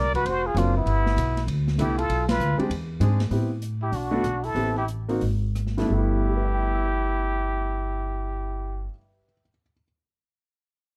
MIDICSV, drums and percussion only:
0, 0, Header, 1, 2, 480
1, 0, Start_track
1, 0, Key_signature, 1, "major"
1, 0, Tempo, 305499
1, 1362, Time_signature, 4, 2, 24, 8
1, 6164, Tempo, 322581
1, 8084, Tempo, 358852
1, 15772, End_track
2, 0, Start_track
2, 0, Title_t, "Drums"
2, 224, Note_on_c, 9, 36, 47
2, 232, Note_on_c, 9, 51, 44
2, 381, Note_off_c, 9, 36, 0
2, 389, Note_off_c, 9, 51, 0
2, 404, Note_on_c, 9, 51, 60
2, 561, Note_off_c, 9, 51, 0
2, 891, Note_on_c, 9, 44, 53
2, 891, Note_on_c, 9, 51, 59
2, 1049, Note_off_c, 9, 44, 0
2, 1049, Note_off_c, 9, 51, 0
2, 1363, Note_on_c, 9, 51, 55
2, 1520, Note_off_c, 9, 51, 0
2, 1671, Note_on_c, 9, 38, 50
2, 1828, Note_off_c, 9, 38, 0
2, 1852, Note_on_c, 9, 44, 63
2, 1852, Note_on_c, 9, 51, 64
2, 2009, Note_off_c, 9, 44, 0
2, 2009, Note_off_c, 9, 51, 0
2, 2153, Note_on_c, 9, 38, 33
2, 2156, Note_on_c, 9, 51, 46
2, 2310, Note_off_c, 9, 38, 0
2, 2313, Note_off_c, 9, 51, 0
2, 2328, Note_on_c, 9, 51, 62
2, 2485, Note_off_c, 9, 51, 0
2, 2632, Note_on_c, 9, 38, 40
2, 2789, Note_off_c, 9, 38, 0
2, 2811, Note_on_c, 9, 44, 53
2, 2811, Note_on_c, 9, 51, 60
2, 2968, Note_off_c, 9, 44, 0
2, 2968, Note_off_c, 9, 51, 0
2, 3119, Note_on_c, 9, 51, 45
2, 3276, Note_off_c, 9, 51, 0
2, 3294, Note_on_c, 9, 51, 61
2, 3451, Note_off_c, 9, 51, 0
2, 3593, Note_on_c, 9, 38, 76
2, 3596, Note_on_c, 9, 51, 67
2, 3750, Note_off_c, 9, 38, 0
2, 3753, Note_off_c, 9, 51, 0
2, 3771, Note_on_c, 9, 44, 56
2, 3928, Note_off_c, 9, 44, 0
2, 4077, Note_on_c, 9, 51, 44
2, 4234, Note_off_c, 9, 51, 0
2, 4254, Note_on_c, 9, 51, 61
2, 4411, Note_off_c, 9, 51, 0
2, 4726, Note_on_c, 9, 44, 51
2, 4726, Note_on_c, 9, 51, 56
2, 4884, Note_off_c, 9, 44, 0
2, 4884, Note_off_c, 9, 51, 0
2, 5026, Note_on_c, 9, 38, 45
2, 5029, Note_on_c, 9, 51, 44
2, 5183, Note_off_c, 9, 38, 0
2, 5186, Note_off_c, 9, 51, 0
2, 5203, Note_on_c, 9, 46, 42
2, 5360, Note_off_c, 9, 46, 0
2, 5687, Note_on_c, 9, 42, 49
2, 5844, Note_off_c, 9, 42, 0
2, 6170, Note_on_c, 9, 46, 46
2, 6318, Note_off_c, 9, 46, 0
2, 6633, Note_on_c, 9, 37, 54
2, 6636, Note_on_c, 9, 42, 49
2, 6782, Note_off_c, 9, 37, 0
2, 6785, Note_off_c, 9, 42, 0
2, 6929, Note_on_c, 9, 46, 35
2, 7078, Note_off_c, 9, 46, 0
2, 7107, Note_on_c, 9, 46, 40
2, 7255, Note_off_c, 9, 46, 0
2, 7591, Note_on_c, 9, 42, 51
2, 7739, Note_off_c, 9, 42, 0
2, 7904, Note_on_c, 9, 46, 33
2, 8053, Note_off_c, 9, 46, 0
2, 8081, Note_on_c, 9, 46, 42
2, 8215, Note_off_c, 9, 46, 0
2, 8539, Note_on_c, 9, 37, 51
2, 8542, Note_on_c, 9, 42, 46
2, 8673, Note_off_c, 9, 37, 0
2, 8676, Note_off_c, 9, 42, 0
2, 8690, Note_on_c, 9, 38, 27
2, 8824, Note_off_c, 9, 38, 0
2, 8841, Note_on_c, 9, 46, 34
2, 8851, Note_on_c, 9, 38, 39
2, 8975, Note_off_c, 9, 46, 0
2, 8985, Note_off_c, 9, 38, 0
2, 15772, End_track
0, 0, End_of_file